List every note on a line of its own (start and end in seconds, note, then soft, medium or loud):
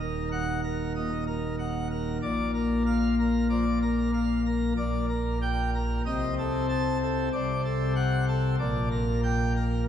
0.00 2.19 D#1 medium
0.00 2.19 D#2 medium
0.00 0.29 A#4 medium
0.32 0.60 F#5 medium
0.64 0.92 A#4 medium
0.96 1.10 A#2 medium
0.96 1.24 D#5 medium
1.27 1.56 A#4 medium
1.59 1.87 F#5 medium
1.91 2.18 A#4 medium
2.22 4.74 A#1 medium
2.22 4.74 A#2 medium
2.22 2.51 D5 medium
2.54 2.83 A#4 medium
2.86 3.15 F5 loud
3.19 3.47 A#4 medium
3.50 3.64 F3 medium
3.50 3.78 D5 medium
3.82 4.11 A#4 medium
4.14 4.42 F5 medium
4.46 4.73 A#4 medium
4.77 6.01 A#1 medium
4.77 6.01 A#2 medium
4.77 5.06 D5 medium
5.10 5.38 A#4 medium
5.42 5.70 G5 loud
5.75 6.01 A#4 medium
6.06 7.29 C2 medium
6.06 7.29 C3 medium
6.06 6.34 D#5 medium
6.38 6.66 A4 medium
6.69 6.97 A5 loud
7.02 7.29 A4 medium
7.32 8.56 C2 medium
7.32 8.57 C3 medium
7.32 7.61 D5 medium
7.65 7.93 A4 medium
7.96 8.25 F#5 loud
8.28 8.55 A4 medium
8.59 9.84 A#1 medium
8.59 9.84 A#2 medium
8.59 8.88 D5 medium
8.91 9.20 A#4 medium
9.24 9.53 G5 loud
9.57 9.84 A#4 medium